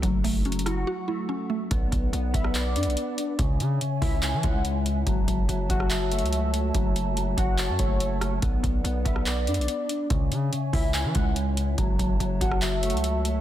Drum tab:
HH |x-----o-----x-x-x-x-----------------------------|x-----x-----x-----x-----x-----x-x-x-x-----x-----|x-----x-----x-----o-----x-----x-----x-----x-----|x-----x-----x-----x-----x-----x-x-x-x-----x-----|
CP |------------------------------------------------|------------------------x-----------------------|------------------------x-----------------------|------------------------x-----------------------|
SD |------------------r-----------------------------|---------------------r--------------------------|------------------------------------------------|---------------------r--------------------------|
BD |o-----o-----------------------------------------|o-----o-----------o-----------------------------|o-----------------o-----------o-----------------|o-----o-----------o-----------------------------|

HH |x-----x-----x-----x-----x-----x-----x-----x-----|x-----x-----x-----x-----x-----x-x-x-x-----x-----|x-----x-----x-----o-----x-----x-----x-----x-----|x-----x-----x-----x-----x-----x-x-x-x-----x-----|
CP |------------------------x-----------------------|------------------------x-----------------------|------------------------x-----------------------|------------------------x-----------------------|
SD |------------------------------------------r-----|---------------------r--------------------------|------------------------------------------------|---------------------r--------------------------|
BD |o-----------------o-----------o-----------------|o-----o-----------o-----------------------------|o-----------------o-----------o-----------------|o-----o-----------o-----------------------------|